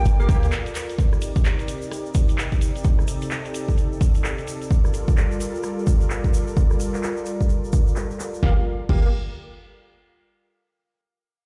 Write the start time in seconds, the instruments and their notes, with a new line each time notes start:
Already playing: analog synth pad F4 A4 A#4 D5, soft synth lead G5
0.05 808-style bass G1, closed hi-hat, shaker
0.20 tine electric piano A#3 G4 F5, shaker
0.29 808-style bass D2, tine electric piano A#3 G4 G5, kick, closed hi-hat, shaker
0.43 closed hi-hat, shaker
0.51 cross-stick, clap, shaker
0.66 closed hi-hat, shaker
0.75 clap, closed hi-hat, shaker
0.90 closed hi-hat, shaker
0.98 analog synth pad C3 D#4 G4, kick, closed hi-hat, shaker
1.13 cross-stick, shaker
1.21 closed hi-hat, shaker
1.36 kick, closed hi-hat, shaker
1.45 clap, shaker
1.59 closed hi-hat, shaker
1.68 closed hi-hat, shaker
1.82 shaker
1.91 cross-stick, closed hi-hat, shaker
2.06 shaker
2.14 kick, closed hi-hat, shaker
2.29 closed hi-hat, shaker
2.38 clap, shaker
2.52 kick, closed hi-hat, shaker
2.61 closed hi-hat, shaker
2.76 closed hi-hat, shaker
2.84 analog synth pad A4, kick, closed hi-hat, shaker
2.99 cross-stick, shaker
3.08 closed hi-hat, shaker
3.21 closed hi-hat, shaker
3.31 clap, shaker
3.45 closed hi-hat, shaker
3.54 closed hi-hat, shaker
3.68 kick, shaker
3.78 closed hi-hat, shaker
3.92 shaker
4.01 kick, closed hi-hat, shaker
4.14 closed hi-hat, shaker
4.24 cross-stick, clap, shaker
4.38 closed hi-hat, shaker
4.47 closed hi-hat, shaker
4.62 closed hi-hat, shaker
4.71 analog synth pad G3 F4 A#4 D5, kick, closed hi-hat, shaker
4.84 cross-stick, shaker
4.94 closed hi-hat, shaker
5.08 kick, closed hi-hat, shaker
5.17 clap, shaker
5.31 closed hi-hat, shaker
5.40 closed hi-hat, shaker
5.55 shaker
5.63 cross-stick, closed hi-hat, shaker
5.79 shaker
5.87 kick, closed hi-hat, shaker
6.01 closed hi-hat, shaker
6.10 clap, shaker
6.24 kick, closed hi-hat, shaker
6.33 closed hi-hat, shaker
6.47 closed hi-hat, shaker
6.57 kick, closed hi-hat, shaker
6.70 cross-stick, shaker
6.80 closed hi-hat, shaker
6.94 clap, closed hi-hat, shaker
7.03 clap, shaker
7.17 closed hi-hat, shaker
7.26 closed hi-hat, shaker
7.41 kick, shaker
7.49 closed hi-hat, shaker
7.64 shaker
7.73 kick, closed hi-hat, shaker
7.87 closed hi-hat, shaker
7.96 cross-stick, clap, shaker
8.10 closed hi-hat, shaker
8.20 clap, closed hi-hat, shaker
8.34 closed hi-hat, shaker
8.43 808-style bass G1, tine electric piano A#3 G4 F5, analog synth pad F4 A4 A#4 D5, kick, snare
8.89 808-style bass G1, tine electric piano A#3 G4 F5, kick, crash